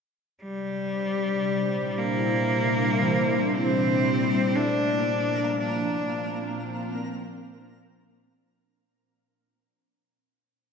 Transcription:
0, 0, Header, 1, 6, 480
1, 0, Start_track
1, 0, Tempo, 1034483
1, 197, Time_signature, 4, 2, 24, 8
1, 4978, End_track
2, 0, Start_track
2, 0, Title_t, "Synth texture"
2, 0, Program_c, 0, 99
2, 2115, Note_on_c, 0, 58, 88
2, 2117, Note_on_c, 0, 82, 81
2, 4046, Note_off_c, 0, 58, 0
2, 4047, Note_off_c, 0, 82, 0
2, 4978, End_track
3, 0, Start_track
3, 0, Title_t, "Cello"
3, 0, Program_c, 1, 42
3, 199, Note_on_c, 1, 55, 77
3, 922, Note_on_c, 1, 58, 88
3, 929, Note_off_c, 1, 55, 0
3, 1641, Note_on_c, 1, 60, 83
3, 1648, Note_off_c, 1, 58, 0
3, 2116, Note_on_c, 1, 62, 89
3, 2123, Note_off_c, 1, 60, 0
3, 2594, Note_off_c, 1, 62, 0
3, 2597, Note_on_c, 1, 62, 80
3, 3058, Note_off_c, 1, 62, 0
3, 4978, End_track
4, 0, Start_track
4, 0, Title_t, "Synth drone"
4, 0, Program_c, 2, 95
4, 198, Note_on_c, 2, 72, 65
4, 203, Note_on_c, 2, 46, 69
4, 4086, Note_off_c, 2, 72, 0
4, 4088, Note_off_c, 2, 46, 0
4, 4978, End_track
5, 0, Start_track
5, 0, Title_t, "Ambient pad"
5, 0, Program_c, 3, 92
5, 196, Note_on_c, 3, 48, 73
5, 269, Note_on_c, 3, 55, 67
5, 353, Note_on_c, 3, 62, 62
5, 706, Note_on_c, 3, 64, 71
5, 2117, Note_off_c, 3, 48, 0
5, 2118, Note_on_c, 3, 46, 80
5, 2121, Note_off_c, 3, 55, 0
5, 2325, Note_on_c, 3, 53, 70
5, 2691, Note_on_c, 3, 60, 91
5, 2888, Note_off_c, 3, 64, 0
5, 4035, Note_off_c, 3, 60, 0
5, 4038, Note_off_c, 3, 46, 0
5, 4040, Note_off_c, 3, 53, 0
5, 4040, Note_off_c, 3, 62, 0
5, 4978, End_track
6, 0, Start_track
6, 0, Title_t, "Clean electric guitar"
6, 0, Program_c, 4, 27
6, 1395, Note_on_c, 4, 52, 48
6, 1852, Note_off_c, 4, 52, 0
6, 1874, Note_on_c, 4, 55, 44
6, 2114, Note_on_c, 4, 57, 47
6, 2332, Note_off_c, 4, 55, 0
6, 4019, Note_off_c, 4, 57, 0
6, 4978, End_track
0, 0, End_of_file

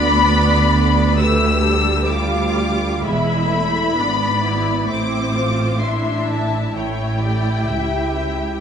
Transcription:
0, 0, Header, 1, 6, 480
1, 0, Start_track
1, 0, Tempo, 947867
1, 1076, Tempo, 921659
1, 1557, Time_signature, 4, 2, 24, 8
1, 3476, Tempo, 943396
1, 3956, Tempo, 1005025
1, 4398, End_track
2, 0, Start_track
2, 0, Title_t, "Violin section"
2, 0, Program_c, 0, 48
2, 0, Note_on_c, 0, 83, 122
2, 579, Note_off_c, 0, 83, 0
2, 604, Note_on_c, 0, 88, 104
2, 1072, Note_on_c, 0, 86, 91
2, 1078, Note_off_c, 0, 88, 0
2, 1553, Note_on_c, 0, 83, 105
2, 1555, Note_off_c, 0, 86, 0
2, 2516, Note_off_c, 0, 83, 0
2, 2525, Note_on_c, 0, 86, 91
2, 2989, Note_off_c, 0, 86, 0
2, 3002, Note_on_c, 0, 84, 73
2, 3237, Note_off_c, 0, 84, 0
2, 3245, Note_on_c, 0, 81, 78
2, 3481, Note_on_c, 0, 79, 91
2, 3482, Note_off_c, 0, 81, 0
2, 4398, Note_off_c, 0, 79, 0
2, 4398, End_track
3, 0, Start_track
3, 0, Title_t, "Violin section"
3, 0, Program_c, 1, 48
3, 0, Note_on_c, 1, 74, 96
3, 585, Note_off_c, 1, 74, 0
3, 595, Note_on_c, 1, 71, 78
3, 837, Note_off_c, 1, 71, 0
3, 837, Note_on_c, 1, 69, 67
3, 1070, Note_on_c, 1, 77, 70
3, 1074, Note_off_c, 1, 69, 0
3, 1554, Note_off_c, 1, 77, 0
3, 1554, Note_on_c, 1, 76, 70
3, 2025, Note_off_c, 1, 76, 0
3, 2036, Note_on_c, 1, 74, 72
3, 2518, Note_off_c, 1, 74, 0
3, 2520, Note_on_c, 1, 72, 67
3, 2987, Note_off_c, 1, 72, 0
3, 2995, Note_on_c, 1, 76, 62
3, 3477, Note_off_c, 1, 76, 0
3, 3480, Note_on_c, 1, 73, 58
3, 3718, Note_off_c, 1, 73, 0
3, 3721, Note_on_c, 1, 74, 59
3, 3958, Note_on_c, 1, 76, 62
3, 3959, Note_off_c, 1, 74, 0
3, 4398, Note_off_c, 1, 76, 0
3, 4398, End_track
4, 0, Start_track
4, 0, Title_t, "Viola section"
4, 0, Program_c, 2, 48
4, 0, Note_on_c, 2, 59, 77
4, 0, Note_on_c, 2, 62, 82
4, 582, Note_off_c, 2, 59, 0
4, 582, Note_off_c, 2, 62, 0
4, 604, Note_on_c, 2, 57, 75
4, 604, Note_on_c, 2, 67, 72
4, 842, Note_off_c, 2, 57, 0
4, 843, Note_on_c, 2, 55, 76
4, 1074, Note_on_c, 2, 65, 77
4, 1078, Note_off_c, 2, 67, 0
4, 1544, Note_off_c, 2, 55, 0
4, 1556, Note_off_c, 2, 65, 0
4, 1558, Note_on_c, 2, 56, 72
4, 1558, Note_on_c, 2, 64, 68
4, 1793, Note_off_c, 2, 56, 0
4, 1794, Note_on_c, 2, 57, 67
4, 2035, Note_off_c, 2, 57, 0
4, 2037, Note_off_c, 2, 64, 0
4, 2038, Note_on_c, 2, 59, 61
4, 2038, Note_on_c, 2, 62, 61
4, 2277, Note_off_c, 2, 62, 0
4, 2280, Note_on_c, 2, 64, 64
4, 2509, Note_off_c, 2, 64, 0
4, 2510, Note_off_c, 2, 59, 0
4, 2513, Note_on_c, 2, 60, 59
4, 2515, Note_on_c, 2, 64, 67
4, 2751, Note_off_c, 2, 64, 0
4, 2759, Note_on_c, 2, 65, 66
4, 2993, Note_off_c, 2, 60, 0
4, 2996, Note_off_c, 2, 65, 0
4, 2999, Note_on_c, 2, 62, 63
4, 2999, Note_on_c, 2, 64, 56
4, 3476, Note_off_c, 2, 64, 0
4, 3479, Note_off_c, 2, 62, 0
4, 3482, Note_on_c, 2, 64, 57
4, 3483, Note_off_c, 2, 64, 0
4, 3483, Note_on_c, 2, 64, 61
4, 3726, Note_on_c, 2, 67, 56
4, 3957, Note_off_c, 2, 67, 0
4, 3963, Note_on_c, 2, 67, 48
4, 4398, Note_off_c, 2, 64, 0
4, 4398, Note_off_c, 2, 67, 0
4, 4398, End_track
5, 0, Start_track
5, 0, Title_t, "Cello section"
5, 0, Program_c, 3, 48
5, 0, Note_on_c, 3, 38, 84
5, 1538, Note_off_c, 3, 38, 0
5, 1560, Note_on_c, 3, 40, 77
5, 2028, Note_off_c, 3, 40, 0
5, 2038, Note_on_c, 3, 44, 61
5, 2509, Note_off_c, 3, 44, 0
5, 2521, Note_on_c, 3, 45, 66
5, 3459, Note_off_c, 3, 45, 0
5, 3480, Note_on_c, 3, 45, 64
5, 3949, Note_off_c, 3, 45, 0
5, 3961, Note_on_c, 3, 37, 55
5, 4398, Note_off_c, 3, 37, 0
5, 4398, End_track
6, 0, Start_track
6, 0, Title_t, "Double bass section"
6, 0, Program_c, 4, 48
6, 0, Note_on_c, 4, 38, 80
6, 1537, Note_off_c, 4, 38, 0
6, 1563, Note_on_c, 4, 28, 69
6, 2030, Note_off_c, 4, 28, 0
6, 2038, Note_on_c, 4, 32, 59
6, 2509, Note_off_c, 4, 32, 0
6, 2518, Note_on_c, 4, 33, 65
6, 3458, Note_off_c, 4, 33, 0
6, 3479, Note_on_c, 4, 33, 55
6, 3948, Note_off_c, 4, 33, 0
6, 3961, Note_on_c, 4, 37, 48
6, 4398, Note_off_c, 4, 37, 0
6, 4398, End_track
0, 0, End_of_file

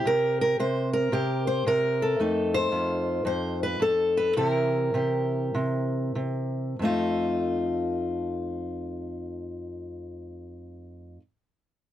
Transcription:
0, 0, Header, 1, 2, 480
1, 0, Start_track
1, 0, Tempo, 532860
1, 50, Time_signature, 4, 2, 24, 8
1, 2929, Tempo, 553506
1, 3889, Tempo, 582524
1, 4849, Tempo, 624350
1, 5809, Tempo, 651466
1, 9606, End_track
2, 0, Start_track
2, 0, Title_t, "Steel-string acoustic guitar"
2, 0, Program_c, 0, 25
2, 0, Note_on_c, 0, 67, 88
2, 49, Note_on_c, 0, 48, 66
2, 62, Note_on_c, 0, 70, 108
2, 362, Note_off_c, 0, 70, 0
2, 372, Note_on_c, 0, 70, 105
2, 526, Note_off_c, 0, 48, 0
2, 531, Note_off_c, 0, 70, 0
2, 536, Note_on_c, 0, 48, 78
2, 540, Note_off_c, 0, 67, 0
2, 541, Note_on_c, 0, 72, 99
2, 838, Note_off_c, 0, 72, 0
2, 842, Note_on_c, 0, 70, 100
2, 999, Note_off_c, 0, 48, 0
2, 1010, Note_on_c, 0, 48, 77
2, 1017, Note_on_c, 0, 67, 92
2, 1322, Note_off_c, 0, 70, 0
2, 1327, Note_on_c, 0, 72, 102
2, 1487, Note_off_c, 0, 48, 0
2, 1487, Note_off_c, 0, 72, 0
2, 1500, Note_on_c, 0, 48, 76
2, 1509, Note_on_c, 0, 70, 110
2, 1808, Note_off_c, 0, 67, 0
2, 1821, Note_on_c, 0, 69, 92
2, 1952, Note_off_c, 0, 48, 0
2, 1976, Note_off_c, 0, 70, 0
2, 1978, Note_on_c, 0, 41, 70
2, 1983, Note_on_c, 0, 57, 44
2, 1988, Note_on_c, 0, 63, 54
2, 2292, Note_on_c, 0, 72, 112
2, 2438, Note_off_c, 0, 41, 0
2, 2447, Note_off_c, 0, 69, 0
2, 2447, Note_on_c, 0, 41, 75
2, 2451, Note_on_c, 0, 65, 43
2, 2915, Note_off_c, 0, 41, 0
2, 2926, Note_on_c, 0, 41, 73
2, 2931, Note_off_c, 0, 72, 0
2, 2942, Note_on_c, 0, 72, 94
2, 3249, Note_off_c, 0, 72, 0
2, 3258, Note_on_c, 0, 71, 97
2, 3391, Note_off_c, 0, 41, 0
2, 3401, Note_on_c, 0, 41, 82
2, 3406, Note_off_c, 0, 65, 0
2, 3412, Note_off_c, 0, 71, 0
2, 3422, Note_on_c, 0, 69, 101
2, 3728, Note_on_c, 0, 71, 87
2, 3877, Note_off_c, 0, 57, 0
2, 3881, Note_off_c, 0, 63, 0
2, 3888, Note_off_c, 0, 41, 0
2, 3891, Note_off_c, 0, 71, 0
2, 3895, Note_on_c, 0, 48, 74
2, 3898, Note_off_c, 0, 69, 0
2, 3900, Note_on_c, 0, 70, 88
2, 3902, Note_on_c, 0, 52, 52
2, 3910, Note_on_c, 0, 64, 44
2, 3917, Note_on_c, 0, 67, 48
2, 4359, Note_off_c, 0, 48, 0
2, 4362, Note_off_c, 0, 67, 0
2, 4368, Note_on_c, 0, 48, 67
2, 4374, Note_on_c, 0, 67, 50
2, 4853, Note_off_c, 0, 48, 0
2, 4866, Note_on_c, 0, 48, 77
2, 5324, Note_off_c, 0, 48, 0
2, 5333, Note_on_c, 0, 48, 69
2, 5794, Note_off_c, 0, 67, 0
2, 5795, Note_off_c, 0, 52, 0
2, 5796, Note_off_c, 0, 48, 0
2, 5799, Note_off_c, 0, 64, 0
2, 5814, Note_off_c, 0, 70, 0
2, 5824, Note_on_c, 0, 41, 62
2, 5844, Note_on_c, 0, 57, 55
2, 5856, Note_on_c, 0, 63, 58
2, 5865, Note_on_c, 0, 65, 79
2, 9048, Note_off_c, 0, 41, 0
2, 9059, Note_off_c, 0, 65, 0
2, 9068, Note_off_c, 0, 57, 0
2, 9079, Note_off_c, 0, 63, 0
2, 9606, End_track
0, 0, End_of_file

